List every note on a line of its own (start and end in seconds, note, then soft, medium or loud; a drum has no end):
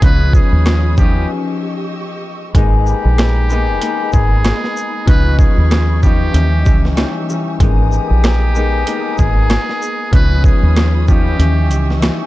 0.00 0.40 C#2 loud
0.00 0.97 F3 medium
0.00 0.99 B3 medium
0.00 1.00 C#4 medium
0.00 1.00 D#4 loud
0.00 0.31 B4 loud
0.00 kick loud
0.00 closed hi-hat medium
0.05 1.29 F4 medium
0.05 1.29 C#5 medium
0.05 1.29 B5 medium
0.05 1.29 D#6 medium
0.33 0.94 G#4 medium
0.33 kick loud
0.33 shaker soft
0.53 1.25 D#2 loud
0.66 cross-stick medium
0.66 snare loud
0.66 closed hi-hat medium
0.97 1.34 F3 medium
0.97 1.28 B3 medium
0.97 1.28 C#4 medium
0.97 1.29 D#4 loud
0.97 1.27 G4 medium
0.97 kick medium
0.97 shaker medium
1.29 2.54 G4 medium
1.29 2.54 D#5 medium
1.29 2.54 C#6 medium
1.29 2.54 E6 medium
2.53 2.93 G#1 loud
2.53 5.04 G#3 medium
2.53 3.49 G#3 loud
2.53 3.50 A#3 medium
2.53 3.51 B3 medium
2.53 7.56 D#4 medium
2.53 3.52 D#4 loud
2.53 5.04 A#5 medium
2.53 5.04 B5 medium
2.53 kick loud
2.53 closed hi-hat medium
2.86 4.09 G4 medium
2.86 shaker soft
3.05 3.78 A#1 medium
3.18 cross-stick medium
3.18 snare loud
3.18 closed hi-hat medium
3.50 3.79 G#3 medium
3.50 3.80 A#3 medium
3.50 3.80 B3 medium
3.50 3.81 D#4 loud
3.50 shaker medium
3.80 5.13 G#3 loud
3.80 5.13 A#3 medium
3.80 5.06 B3 medium
3.80 5.08 D#4 loud
3.80 closed hi-hat loud
4.13 4.51 G#1 medium
4.13 5.04 G#4 medium
4.13 kick medium
4.13 shaker medium
4.44 cross-stick medium
4.44 snare loud
4.44 closed hi-hat medium
4.64 snare soft
4.77 shaker medium
5.06 5.45 C#2 loud
5.06 6.02 F3 medium
5.06 6.04 B3 loud
5.06 6.05 C#4 medium
5.06 6.06 D#4 loud
5.06 6.34 F4 medium
5.06 5.36 B4 loud
5.06 6.34 B5 medium
5.06 6.34 C#6 medium
5.06 kick loud
5.06 closed hi-hat medium
5.39 5.99 G#4 medium
5.39 kick loud
5.39 shaker soft
5.58 6.30 D#2 loud
5.71 cross-stick medium
5.71 snare loud
5.71 closed hi-hat medium
6.03 6.39 F3 loud
6.03 6.33 B3 medium
6.03 6.32 C#4 medium
6.03 6.33 D#4 loud
6.03 6.93 G4 loud
6.03 kick medium
6.03 shaker medium
6.32 6.66 D#2 loud
6.32 6.93 E3 loud
6.32 6.94 G3 medium
6.32 6.93 C#4 medium
6.32 6.93 D#4 loud
6.32 7.60 G4 medium
6.32 7.60 C#6 medium
6.32 7.60 E6 medium
6.32 closed hi-hat loud
6.65 7.04 C#2 medium
6.65 kick medium
6.65 shaker medium
6.85 snare soft
6.94 7.28 E3 medium
6.94 7.29 G3 medium
6.94 7.26 C#4 medium
6.94 7.27 D#4 medium
6.94 cross-stick medium
6.94 snare loud
6.94 closed hi-hat medium
7.29 7.65 E3 medium
7.29 7.65 G3 medium
7.29 7.59 C#4 medium
7.29 7.60 D#4 medium
7.29 shaker medium
7.60 7.98 G#1 loud
7.60 8.54 G#3 loud
7.60 10.11 G#3 medium
7.60 8.56 A#3 medium
7.60 8.56 B3 medium
7.60 8.57 D#4 loud
7.60 10.11 A#4 medium
7.60 10.11 A#5 medium
7.60 10.11 D#6 loud
7.60 kick loud
7.60 closed hi-hat loud
7.92 9.15 G4 medium
7.92 shaker soft
8.11 8.83 A#1 medium
8.24 cross-stick medium
8.24 snare loud
8.24 closed hi-hat medium
8.55 8.84 G#3 medium
8.55 8.85 A#3 medium
8.55 8.85 B3 medium
8.55 8.86 D#4 loud
8.55 shaker medium
8.85 10.18 G#3 loud
8.85 10.18 A#3 medium
8.85 10.12 B3 medium
8.85 10.13 D#4 loud
8.85 closed hi-hat loud
9.18 9.56 G#1 medium
9.18 10.09 G#4 medium
9.18 kick medium
9.18 shaker medium
9.50 cross-stick medium
9.50 snare loud
9.50 closed hi-hat medium
9.69 snare soft
9.82 shaker medium
10.11 10.51 C#2 loud
10.11 11.08 F3 medium
10.11 11.09 B3 medium
10.11 11.10 C#4 medium
10.11 11.11 D#4 loud
10.11 10.42 B4 loud
10.11 kick loud
10.11 closed hi-hat medium
10.15 11.39 F4 medium
10.15 11.39 C#5 medium
10.15 11.39 B5 medium
10.15 11.39 D#6 loud
10.44 11.04 G#4 medium
10.44 kick loud
10.44 shaker soft
10.63 11.36 D#2 loud
10.76 cross-stick medium
10.76 snare loud
10.76 closed hi-hat medium
11.08 11.44 F3 medium
11.08 11.38 B3 medium
11.08 11.37 C#4 medium
11.08 11.38 D#4 loud
11.08 11.99 G4 medium
11.08 kick medium
11.08 shaker medium
11.37 11.71 D#2 loud
11.37 11.98 E3 loud
11.37 11.99 G3 medium
11.37 11.98 C#4 medium
11.37 11.98 D#4 loud
11.37 12.26 G4 medium
11.37 12.26 D#5 medium
11.37 12.26 C#6 medium
11.37 12.26 E6 medium
11.37 closed hi-hat loud
11.71 12.09 C#2 loud
11.71 closed hi-hat medium
11.71 shaker medium
11.90 snare soft
12.00 12.26 E3 medium
12.00 12.26 G3 medium
12.00 12.26 C#4 medium
12.00 12.26 D#4 medium
12.00 cross-stick medium
12.00 snare loud
12.00 closed hi-hat medium